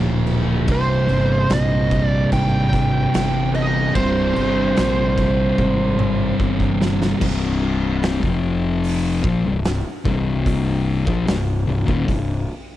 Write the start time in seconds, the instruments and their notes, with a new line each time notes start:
Already playing: fingered electric bass D1, distorted electric guitar A#2 F3 A#3
0.27 crash
0.67 fingered electric bass C1, distorted electric guitar C2 G2 C3, kick, crash
0.72 lead electric guitar C5
1.09 fingered electric bass G1, crash
1.50 fingered electric bass A#1, lead electric guitar D#5, snare, crash
1.91 kick, crash
2.05 lead electric guitar D5
2.32 fingered electric bass G#1, lead electric guitar G5, kick, crash
2.71 distorted electric guitar C2 G2 C3, kick, snare, crash
3.14 fingered electric bass G1, distorted electric guitar C2 G2 C3, snare, crash
3.55 lead electric guitar D#5, crash
3.94 fingered electric bass C1, distorted electric guitar C2 G2 C3, lead electric guitar C5, kick, crash
3.98 distorted electric guitar C3
4.36 fingered electric bass G1, crash
4.77 fingered electric bass A#1, snare, crash
5.18 kick, crash
5.58 fingered electric bass G#1, kick, high tom
5.97 distorted electric guitar C2 G2 C3, mid tom
6.38 fingered electric bass G1, distorted electric guitar C2 G2 C3, kick
6.60 kick
6.81 snare
7.02 snare
7.21 fingered electric bass C1, distorted electric guitar C2 G2 C3, kick, crash
8.03 snare, open hi-hat
8.22 fingered electric bass F1, distorted electric guitar F2 C3 F3, kick
8.84 open hi-hat
9.23 fingered electric bass A#1, distorted electric guitar A#2 F3, kick
9.44 fingered electric bass C1, distorted electric guitar C2 G2
9.64 snare, open hi-hat
10.04 fingered electric bass C1, distorted electric guitar C2 G2 C3, kick
10.46 kick, open hi-hat
11.05 fingered electric bass A#1, distorted electric guitar A#2 F3, kick
11.26 fingered electric bass C1, distorted electric guitar C2 G2, snare, open hi-hat
11.67 fingered electric bass C1, distorted electric guitar C2 G2
11.86 fingered electric bass D#1, distorted electric guitar D#2 A#2, kick
12.06 fingered electric bass C1, distorted electric guitar C2 G2, kick, open hi-hat